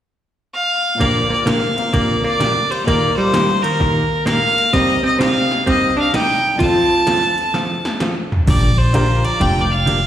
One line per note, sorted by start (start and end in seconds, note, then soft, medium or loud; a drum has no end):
0.54 1.02 F5 medium
0.95 2.82 A#2 soft
0.95 1.75 A#3 soft
1.00 1.22 A#2 medium
1.00 1.22 D3 soft
1.00 1.23 F3 medium
1.00 1.29 A#3 medium
1.00 1.23 A#3 medium
1.00 2.87 D4 soft
1.00 1.23 D4 medium
1.00 1.23 G4 medium
1.00 2.86 G4 soft
1.00 1.31 D5 medium
1.00 kick soft
1.00 ride medium
1.06 2.90 C5 medium
1.30 1.44 A#3 soft
1.30 1.47 D5 medium
1.46 1.58 A#2 medium
1.46 1.59 D3 medium
1.46 1.59 F3 medium
1.46 1.90 A#3 medium
1.46 1.59 A#3 medium
1.46 1.59 D4 medium
1.46 1.59 G4 medium
1.46 1.94 F5 medium
1.46 snare medium
1.46 hi-hat pedal medium
1.46 ride medium
1.76 2.84 A#3 soft
1.76 2.87 C4 soft
1.76 2.88 F4 soft
1.76 2.88 A#4 soft
1.76 ride soft
1.93 2.16 A#2 medium
1.93 2.16 D3 medium
1.93 2.16 F3 medium
1.93 2.23 A#3 medium
1.93 2.17 A#3 medium
1.93 2.16 D4 medium
1.93 2.16 G4 medium
1.93 2.24 D5 medium
1.93 kick soft
1.93 ride medium
2.24 2.71 A#3 medium
2.24 2.72 D5 medium
2.40 2.52 A#2 medium
2.40 2.52 D3 medium
2.40 2.52 F3 medium
2.40 2.52 A#3 medium
2.40 2.52 D4 medium
2.40 2.52 G4 medium
2.40 snare medium
2.40 hi-hat pedal soft
2.40 ride medium
2.71 2.87 G3 medium
2.71 2.85 C5 medium
2.71 ride soft
2.84 4.72 A#2 soft
2.84 3.09 A#2 medium
2.84 3.10 D#3 medium
2.84 4.73 A#3 soft
2.84 3.16 A#3 medium
2.84 3.10 A#3 medium
2.84 4.72 D#4 soft
2.84 3.10 G4 medium
2.84 4.74 G4 soft
2.84 3.15 D5 medium
2.84 kick soft
2.84 ride medium
2.88 3.10 D#4 medium
2.88 3.10 A#4 medium
2.88 4.73 A#4 medium
3.17 3.64 G3 medium
3.17 3.64 C5 medium
3.33 3.45 A#2 medium
3.33 3.45 D#3 medium
3.33 3.46 A#3 medium
3.33 3.46 D#4 medium
3.33 3.46 G4 medium
3.33 3.46 A#4 medium
3.33 snare medium
3.33 hi-hat pedal medium
3.33 ride medium
3.62 4.27 D#3 medium
3.62 4.26 A#4 medium
3.62 ride medium
3.80 4.02 A#2 medium
3.80 4.03 D#3 medium
3.80 4.03 A#3 medium
3.80 4.03 D#4 medium
3.80 4.03 G4 medium
3.80 4.03 A#4 medium
3.80 kick soft
4.26 4.38 A#2 medium
4.26 4.38 D#3 medium
4.26 4.70 A#3 medium
4.26 4.39 A#3 medium
4.26 4.39 D#4 medium
4.26 4.39 G4 medium
4.26 4.39 A#4 medium
4.26 4.75 F5 loud
4.26 snare medium
4.26 hi-hat pedal soft
4.26 ride medium
4.58 ride soft
4.73 6.60 C3 soft
4.73 4.96 C3 medium
4.73 6.60 G3 soft
4.73 4.96 G3 medium
4.73 4.96 A#3 medium
4.73 5.02 C4 medium
4.73 6.60 D#4 soft
4.73 4.96 D#4 medium
4.73 4.96 G4 medium
4.73 6.61 A#4 soft
4.73 6.61 D5 medium
4.73 5.04 D#5 medium
4.73 kick soft
4.73 ride medium
5.03 5.18 C4 medium
5.03 5.20 D#5 medium
5.19 5.32 C3 medium
5.19 5.32 G3 medium
5.19 5.32 A#3 medium
5.19 5.63 C4 medium
5.19 5.32 D#4 medium
5.19 5.32 G4 medium
5.19 5.64 F5 medium
5.19 snare medium
5.19 hi-hat pedal soft
5.19 ride medium
5.51 snare soft
5.67 5.89 C3 medium
5.67 5.90 G3 medium
5.67 5.90 A#3 medium
5.67 5.95 C4 medium
5.67 5.90 D#4 medium
5.67 5.90 G4 medium
5.67 5.96 D#5 medium
5.67 kick soft
5.67 ride medium
5.97 6.12 D4 medium
5.97 6.14 F5 medium
6.14 6.26 C3 medium
6.14 6.26 G3 medium
6.14 6.26 A#3 medium
6.14 6.58 D#4 medium
6.14 6.26 D#4 medium
6.14 6.26 G4 medium
6.14 6.58 G5 medium
6.14 snare medium
6.14 hi-hat pedal soft
6.14 ride medium
6.55 8.44 F2 medium
6.55 8.46 F3 soft
6.59 6.83 F3 medium
6.59 6.83 A3 medium
6.59 8.47 C4 soft
6.59 6.83 C4 medium
6.59 7.96 F4 medium
6.59 6.83 F4 medium
6.59 6.84 A4 medium
6.59 7.97 A5 loud
6.59 kick soft
6.59 ride medium
6.63 8.48 A4 soft
6.63 8.50 C5 medium
7.07 7.19 F3 medium
7.07 7.19 A3 medium
7.07 7.20 C4 medium
7.07 7.20 F4 medium
7.07 7.20 A4 medium
7.07 snare medium
7.07 hi-hat pedal medium
7.07 ride medium
7.38 ride soft
7.54 7.76 F3 soft
7.54 7.77 A3 medium
7.54 7.77 C4 medium
7.54 7.77 F4 medium
7.54 7.77 A4 medium
7.54 snare soft
7.85 snare medium
8.00 8.13 F3 medium
8.00 8.13 A3 medium
8.00 8.13 C4 medium
8.00 8.13 F4 medium
8.00 8.13 A4 medium
8.00 snare medium
8.00 hi-hat pedal medium
8.32 floor tom medium
8.47 9.22 A#1 medium
8.47 8.70 D3 medium
8.47 8.70 F3 medium
8.47 8.70 A#3 medium
8.47 8.70 D4 medium
8.47 8.70 G4 medium
8.47 8.80 D5 medium
8.47 kick medium
8.47 crash medium
8.78 9.26 C5 medium
8.93 9.06 D3 medium
8.93 9.06 F3 medium
8.93 9.06 A#3 medium
8.93 9.65 D4 medium
8.93 9.06 D4 medium
8.93 9.65 F4 medium
8.93 9.65 G4 medium
8.93 9.06 G4 medium
8.93 9.65 A#4 medium
8.93 hi-hat pedal medium
8.93 ride medium
9.24 9.42 D5 medium
9.24 ride soft
9.40 10.07 F1 medium
9.40 9.63 D3 medium
9.40 9.63 F3 medium
9.40 9.63 A#3 medium
9.40 9.63 D4 medium
9.40 9.63 G4 medium
9.40 9.63 G5 medium
9.40 kick soft
9.40 ride medium
9.62 9.73 D5 medium
9.71 10.07 F5 medium
9.86 9.98 D3 medium
9.86 9.99 F3 medium
9.86 9.99 A#3 medium
9.86 9.99 D4 medium
9.86 9.99 G4 medium
9.86 hi-hat pedal medium
9.86 ride medium